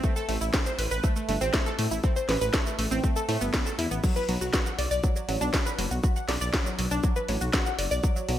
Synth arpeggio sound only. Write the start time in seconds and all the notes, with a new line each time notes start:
0.04 A3
0.16 A4
0.29 A3
0.41 E4
0.54 C4
0.66 C5
0.79 B4
0.91 B4
1.03 A3
1.16 A3
1.29 A3
1.41 C4
1.54 A3
1.66 A4
1.79 A3
1.91 E4
2.04 C4
2.16 C5
2.29 B4
2.41 B4
2.54 A3
2.66 A3
2.79 A3
2.91 C4
3.04 A3
3.16 A4
3.29 A3
3.41 B3
3.54 B3
3.66 A4
3.79 E4
3.91 B3
4.04 F#3
4.16 B4
4.29 F#3
4.41 F#4
4.54 F#4
4.66 F#5
4.78 D5
4.91 D5
5.04 F#3
5.16 F#3
5.28 F#3
5.41 D4
5.53 F#3
5.66 B4
5.79 F#3
5.91 F#4
6.04 F#4
6.16 F#5
6.29 D5
6.41 D5
6.54 F#3
6.66 F#3
6.79 F#3
6.91 D4
7.04 F#3
7.16 B4
7.29 F#3
7.41 F#4
7.53 F#4
7.66 F#5
7.79 D5
7.91 D5
8.04 F#3
8.16 F#3
8.28 F#3